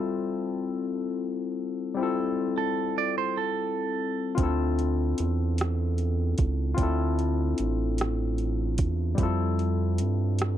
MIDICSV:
0, 0, Header, 1, 5, 480
1, 0, Start_track
1, 0, Tempo, 800000
1, 1189, Time_signature, 6, 3, 24, 8
1, 6347, End_track
2, 0, Start_track
2, 0, Title_t, "Clean electric guitar"
2, 0, Program_c, 0, 27
2, 1546, Note_on_c, 0, 69, 62
2, 1775, Note_off_c, 0, 69, 0
2, 1788, Note_on_c, 0, 74, 68
2, 1902, Note_off_c, 0, 74, 0
2, 1907, Note_on_c, 0, 72, 74
2, 2022, Note_off_c, 0, 72, 0
2, 2025, Note_on_c, 0, 69, 72
2, 2603, Note_off_c, 0, 69, 0
2, 6347, End_track
3, 0, Start_track
3, 0, Title_t, "Tine electric piano"
3, 0, Program_c, 1, 4
3, 0, Control_c, 1, 64, 127
3, 0, Note_on_c, 1, 55, 60
3, 0, Note_on_c, 1, 60, 62
3, 0, Note_on_c, 1, 64, 59
3, 0, Note_on_c, 1, 65, 60
3, 0, Note_on_c, 1, 69, 80
3, 1154, Note_off_c, 1, 55, 0
3, 1160, Note_off_c, 1, 60, 0
3, 1167, Note_off_c, 1, 64, 0
3, 1168, Note_on_c, 1, 55, 63
3, 1173, Note_off_c, 1, 65, 0
3, 1179, Note_off_c, 1, 69, 0
3, 1179, Note_on_c, 1, 60, 61
3, 1192, Note_on_c, 1, 64, 61
3, 1204, Note_on_c, 1, 65, 53
3, 1217, Note_on_c, 1, 69, 75
3, 2594, Note_off_c, 1, 55, 0
3, 2600, Note_off_c, 1, 60, 0
3, 2601, Note_off_c, 1, 65, 0
3, 2607, Note_off_c, 1, 64, 0
3, 2608, Note_on_c, 1, 65, 67
3, 2619, Note_off_c, 1, 69, 0
3, 2621, Note_on_c, 1, 60, 60
3, 2633, Note_on_c, 1, 62, 54
3, 2636, Control_c, 1, 64, 0
3, 2647, Note_on_c, 1, 64, 58
3, 2659, Note_on_c, 1, 69, 75
3, 2754, Control_c, 1, 64, 127
3, 4035, Note_off_c, 1, 65, 0
3, 4041, Note_off_c, 1, 60, 0
3, 4047, Note_off_c, 1, 62, 0
3, 4047, Note_on_c, 1, 65, 68
3, 4054, Note_off_c, 1, 64, 0
3, 4059, Note_on_c, 1, 60, 56
3, 4060, Note_off_c, 1, 69, 0
3, 4071, Note_on_c, 1, 62, 62
3, 4085, Note_on_c, 1, 64, 64
3, 4097, Note_on_c, 1, 69, 69
3, 5474, Note_off_c, 1, 65, 0
3, 5480, Note_off_c, 1, 60, 0
3, 5486, Note_off_c, 1, 62, 0
3, 5488, Note_on_c, 1, 55, 66
3, 5493, Note_off_c, 1, 64, 0
3, 5499, Note_off_c, 1, 69, 0
3, 5501, Note_on_c, 1, 60, 55
3, 5514, Note_on_c, 1, 64, 58
3, 5516, Control_c, 1, 64, 0
3, 5527, Note_on_c, 1, 65, 58
3, 5538, Note_on_c, 1, 69, 75
3, 5632, Control_c, 1, 64, 127
3, 6347, Note_off_c, 1, 55, 0
3, 6347, Note_off_c, 1, 60, 0
3, 6347, Note_off_c, 1, 64, 0
3, 6347, Note_off_c, 1, 65, 0
3, 6347, Note_off_c, 1, 69, 0
3, 6347, End_track
4, 0, Start_track
4, 0, Title_t, "Analog synth bass"
4, 0, Program_c, 2, 38
4, 2634, Note_on_c, 2, 38, 94
4, 3088, Note_off_c, 2, 38, 0
4, 3120, Note_on_c, 2, 40, 91
4, 3811, Note_off_c, 2, 40, 0
4, 3839, Note_on_c, 2, 37, 80
4, 4050, Note_off_c, 2, 37, 0
4, 4073, Note_on_c, 2, 38, 100
4, 4527, Note_off_c, 2, 38, 0
4, 4558, Note_on_c, 2, 33, 80
4, 5280, Note_on_c, 2, 40, 81
4, 5289, Note_off_c, 2, 33, 0
4, 5491, Note_off_c, 2, 40, 0
4, 5515, Note_on_c, 2, 41, 91
4, 6001, Note_on_c, 2, 43, 83
4, 6010, Note_off_c, 2, 41, 0
4, 6347, Note_off_c, 2, 43, 0
4, 6347, End_track
5, 0, Start_track
5, 0, Title_t, "Drums"
5, 2627, Note_on_c, 9, 36, 95
5, 2627, Note_on_c, 9, 42, 71
5, 2687, Note_off_c, 9, 36, 0
5, 2687, Note_off_c, 9, 42, 0
5, 2872, Note_on_c, 9, 42, 52
5, 2932, Note_off_c, 9, 42, 0
5, 3107, Note_on_c, 9, 42, 62
5, 3167, Note_off_c, 9, 42, 0
5, 3349, Note_on_c, 9, 42, 56
5, 3367, Note_on_c, 9, 37, 99
5, 3409, Note_off_c, 9, 42, 0
5, 3427, Note_off_c, 9, 37, 0
5, 3588, Note_on_c, 9, 42, 46
5, 3648, Note_off_c, 9, 42, 0
5, 3826, Note_on_c, 9, 42, 60
5, 3832, Note_on_c, 9, 36, 79
5, 3886, Note_off_c, 9, 42, 0
5, 3892, Note_off_c, 9, 36, 0
5, 4067, Note_on_c, 9, 36, 86
5, 4067, Note_on_c, 9, 42, 68
5, 4127, Note_off_c, 9, 36, 0
5, 4127, Note_off_c, 9, 42, 0
5, 4312, Note_on_c, 9, 42, 48
5, 4372, Note_off_c, 9, 42, 0
5, 4547, Note_on_c, 9, 42, 62
5, 4607, Note_off_c, 9, 42, 0
5, 4789, Note_on_c, 9, 42, 52
5, 4807, Note_on_c, 9, 37, 91
5, 4849, Note_off_c, 9, 42, 0
5, 4867, Note_off_c, 9, 37, 0
5, 5029, Note_on_c, 9, 42, 41
5, 5089, Note_off_c, 9, 42, 0
5, 5267, Note_on_c, 9, 42, 72
5, 5273, Note_on_c, 9, 36, 80
5, 5327, Note_off_c, 9, 42, 0
5, 5333, Note_off_c, 9, 36, 0
5, 5508, Note_on_c, 9, 36, 103
5, 5508, Note_on_c, 9, 42, 69
5, 5568, Note_off_c, 9, 36, 0
5, 5568, Note_off_c, 9, 42, 0
5, 5755, Note_on_c, 9, 42, 44
5, 5815, Note_off_c, 9, 42, 0
5, 5990, Note_on_c, 9, 42, 58
5, 6050, Note_off_c, 9, 42, 0
5, 6231, Note_on_c, 9, 42, 59
5, 6250, Note_on_c, 9, 37, 104
5, 6291, Note_off_c, 9, 42, 0
5, 6310, Note_off_c, 9, 37, 0
5, 6347, End_track
0, 0, End_of_file